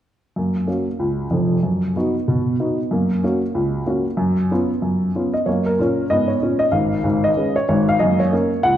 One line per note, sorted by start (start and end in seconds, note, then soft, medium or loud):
0.36 0.63 F#2 soft
0.36 0.55 A#3 soft
0.67 0.85 A#3 soft
0.67 0.85 C#4 soft
0.67 0.85 F#4 soft
0.99 1.26 C#2 medium
1.31 1.56 F1 soft
1.31 1.56 F2 medium
1.63 1.90 F#2 medium
1.96 2.13 B3 soft
1.96 2.14 D#4 soft
1.96 2.14 F#4 soft
2.28 2.55 B2 medium
2.60 2.77 B3 soft
2.60 2.77 D#4 soft
2.60 2.77 F#4 soft
2.91 3.18 F#2 medium
2.91 3.10 A#3 soft
3.24 3.41 A#3 soft
3.24 3.41 C#4 soft
3.24 3.41 F#4 soft
3.55 3.82 C#2 medium
3.86 4.04 A#3 soft
3.86 4.04 C#4 soft
3.86 4.04 F#4 soft
4.17 4.45 F#2 medium
4.51 4.69 B3 soft
4.51 4.69 C#4 soft
4.51 4.69 F4 soft
4.82 5.09 F#2 medium
5.15 5.32 B3 soft
5.15 5.33 C#4 soft
5.15 5.33 F4 soft
5.34 5.46 D#5 medium
5.46 5.71 F#2 soft
5.46 5.73 A#3 medium
5.46 5.65 C#5 medium
5.66 6.10 A#4 medium
5.79 6.04 A#2 medium
5.79 6.05 C#4 medium
6.10 6.35 G#2 medium
6.10 6.36 B3 medium
6.10 6.29 D#5 medium
6.28 6.60 C#5 medium
6.41 6.67 A#2 medium
6.41 6.68 C#4 medium
6.59 6.72 D#5 medium
6.72 6.98 G#1 medium
6.72 6.98 G#2 soft
6.72 7.23 F5 medium
7.04 7.30 G#1 medium
7.04 7.30 G#2 medium
7.24 7.56 D#5 medium
7.37 7.54 G#3 soft
7.37 7.54 C#4 soft
7.37 7.55 B4 soft
7.56 7.67 C#5 medium
7.69 7.94 G#1 medium
7.69 7.94 G#2 medium
7.69 7.88 C#5 medium
7.89 8.01 F5 medium
7.99 8.27 F#2 medium
7.99 8.19 A#3 soft
7.99 8.19 D#5 medium
8.20 8.64 C#5 medium
8.32 8.50 A#3 soft
8.32 8.50 C#4 soft
8.32 8.51 A#4 soft
8.63 8.77 C#2 medium
8.63 8.77 F#5 medium